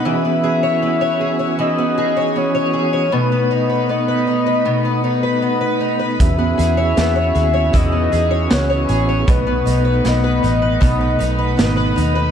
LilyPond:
<<
  \new Staff \with { instrumentName = "Soft synth lead" } { \time 4/4 \key e \major \tempo 4 = 78 e''2 dis''4 cis''4 | b'4 dis''2~ dis''8 r8 | e''2 dis''4 cis''4 | b'4 dis''2~ dis''8 r8 | }
  \new Staff \with { instrumentName = "Twelve-string acoustic guitar" } { \time 4/4 \key e \major e16 b16 gis'16 cis''16 b16 cis''16 gis'16 cis''16 e16 b16 gis'16 cis''16 b16 cis''16 gis'16 cis''16 | b,16 b16 dis'16 b'16 b16 b'16 dis'16 b'16 b,16 b16 dis'16 b'16 b16 b'16 dis'16 b'16 | r16 b16 gis'16 cis''16 b16 cis''16 gis'16 cis''16 e16 b16 gis'16 cis''16 b16 cis''16 gis'16 cis''16 | b,16 b16 dis'16 b'16 b16 b'16 dis'16 b'16 b,16 b16 dis'16 b'16 b16 b'16 dis'16 b'16 | }
  \new Staff \with { instrumentName = "Tonewheel organ" } { \time 4/4 \key e \major <e cis' fis' gis'>1 | <a b dis'>1 | <cis' e' fis' gis'>1 | <a dis'>1 | }
  \new Staff \with { instrumentName = "Tonewheel organ" } { \time 4/4 \key e \major b1 | r1 | b1~ | b1 | }
  \new Staff \with { instrumentName = "Fingered electric bass" } { \clef bass \time 4/4 \key e \major r1 | r1 | e,8 e,8 e,8 dis,8 e,8 e,8 cis,8 a,,8 | b,,8 b,,8 b,,8 a,,8 b,,8 b,,8 gis,,8 dis,8 | }
  \new DrumStaff \with { instrumentName = "Drums" } \drummode { \time 4/4 r4 r4 r4 r4 | r4 r4 r4 r4 | <hh bd>8 hh8 <hh sn>8 hh8 <hh bd>8 hh8 <hh sn>8 hh8 | <hh bd>8 hh8 <hh sn>8 hh8 <hh bd>8 hh8 <hh sn>8 hh8 | }
>>